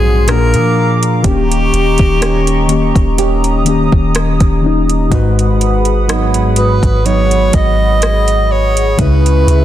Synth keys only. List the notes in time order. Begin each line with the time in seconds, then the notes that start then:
Already playing: G#2 G#3 C4 F#4
0.26 A#2 A#3 D4
0.30 G#4
1.22 D#3 A#3 C#4
1.27 G4
2.68 D#3 A#3 C#4
2.72 G4
3.65 D#3 A#3 C#4
3.69 G4
4.61 D#3 A#3 C#4
4.66 D#4
5.10 G#2 G#3 F#4
5.14 B4
6.55 G#2 G#3 F#4
6.60 B4
8.97 C#3 G#3 E4
9.02 B4